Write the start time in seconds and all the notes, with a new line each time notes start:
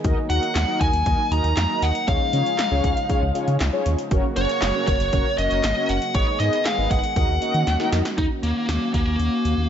Already playing: D#3
0.04 D#2 F#3 A#3 D#4 F#4 A#4 D#5, kick, closed hi-hat
0.30 D#2 D#4 F#4 A#4 F#5, closed hi-hat
0.43 closed hi-hat
0.55 D#2, snare, clap, closed hi-hat
0.68 D#4 F#4 A#4 D#5
0.81 D#2 G#5, kick, closed hi-hat
0.93 D#2, closed hi-hat
1.06 D#2 D#4 F#4 A#4 D#5, kick, closed hi-hat
1.31 D#2 D#4 F#4 A#4 D#5 A#5, closed hi-hat
1.44 D#2, closed hi-hat
1.57 F2, snare, clap, closed hi-hat
1.70 D#4 F#4 A#4 D#5
1.82 D#2 F#5, closed hi-hat
1.95 closed hi-hat
2.08 C#2 C#3 F3 G#3 C#4 F4 G#4 C#5 F5, kick, closed hi-hat
2.33 C#3 C#4 F4 G#4 C#5, closed hi-hat
2.46 closed hi-hat
2.59 snare, clap, closed hi-hat
2.71 C#2 C#4 F4 G#4 C#5
2.84 C#2, kick, closed hi-hat
2.97 closed hi-hat
3.09 C#4 F4 G#4 C#5, kick, closed hi-hat
3.22 C#2
3.35 C#4 F4 G#4 C#5, closed hi-hat
3.48 C#3, closed hi-hat
3.60 C#2, snare, clap, closed hi-hat
3.73 C#4 F4 G#4 C#5
3.86 D#2, closed hi-hat
3.98 closed hi-hat
4.11 F#1 F#3 A#3 C#4 F#4 A#4 C#5, kick, closed hi-hat
4.36 F#1 C#4 F#4 A#4 C#5, closed hi-hat
4.49 closed hi-hat
4.62 F#1, snare, clap, closed hi-hat
4.75 C#4 F#4 A#4 C#5
4.87 F#1 C#5, kick, closed hi-hat
5.00 F#1, closed hi-hat
5.13 F#1 C#4 F#4 A#4 C#5, kick, closed hi-hat
5.38 F#1 C#4 F#4 A#4 C#5 D#5, closed hi-hat
5.51 F#1, closed hi-hat
5.64 G#1, snare, clap, closed hi-hat
5.77 C#4 F#4 A#4 C#5
5.89 F#1 F#5, closed hi-hat
6.02 closed hi-hat
6.15 G#1 D#3 G#3 B3 D#4 G#4 B4 C#5 D#5, kick, closed hi-hat
6.40 G#2 D#4 G#4 B4 D#5, closed hi-hat
6.53 closed hi-hat
6.65 F5, snare, clap, closed hi-hat
6.78 G#1 D#4 G#4 B4 D#5
6.91 G#1 F#5, kick, closed hi-hat
7.04 closed hi-hat
7.16 D#2 A#3 C#4 D#4 F#4 A#4 D#5, kick, closed hi-hat
7.29 D#2
7.42 D#4 F#4 A#4 D#5, closed hi-hat
7.54 D#3, closed hi-hat
7.67 D#2, snare, closed hi-hat
7.80 D#4 F#4 A#4 D#5, snare
7.92 F2, snare, closed hi-hat
8.05 snare, closed hi-hat
8.18 D#2 D#3 A#3 C#4 D#4 F#4, kick, closed hi-hat
8.43 D#2 A#3, closed hi-hat
8.69 D#2, snare, closed hi-hat
8.94 D#2 A#3, kick, closed hi-hat
9.07 D#2
9.19 D#2, closed hi-hat
9.45 D#2, closed hi-hat
9.58 D#2